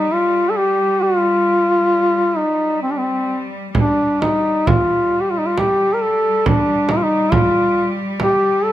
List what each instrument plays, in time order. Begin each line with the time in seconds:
Already playing: cello section G3, duduk D#4
0.13 duduk F4
0.50 duduk A4
0.57 duduk G4
1.03 duduk F4
2.37 duduk D#4
2.82 duduk C4
2.90 duduk D4
2.98 duduk C4
3.75 cello section G3, duduk D4, frame drum
4.21 duduk D#4, frame drum
4.67 duduk F4, frame drum
5.21 duduk G4
5.30 duduk F4
5.38 duduk D#4
5.46 duduk F4
5.58 duduk G4, frame drum
5.94 duduk A#4
6.02 duduk A4
6.46 duduk D4, frame drum
6.89 duduk D#4, frame drum
6.97 duduk F4
7.03 duduk D#4
7.32 duduk F4, frame drum
8.20 duduk G4, frame drum
8.64 duduk A4